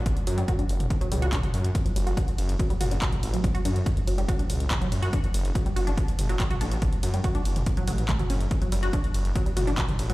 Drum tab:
RD |----------------|x-x-x-x-x-x-x-x-|x-x-x-x-x-x-x-x-|x-x-x-x-x-x-x-x-|
HH |xxoxxxoxxxoxxxox|xxoxxxoxxxoxxxox|xxoxxxoxxxoxxxox|xxoxxxoxxxoxxxox|
CP |------------x---|------------x---|------------x---|------------x---|
T2 |-------o--o-oo--|----------o-oo--|----------o-oo--|----------o-oo--|
BD |o---o---o---o---|o---o---o---o---|o---o---o---o---|o---o---o---o---|

RD |x-x-x-x-x-x-x-x-|x-x-x-x-x-x-x-x-|
HH |xxoxxxoxxxoxxxox|xxoxxxoxxxoxxxox|
CP |------------x---|------------x---|
T2 |-------o--o-oo--|----------o-oo--|
BD |o---o---o---o---|o---o---o---o---|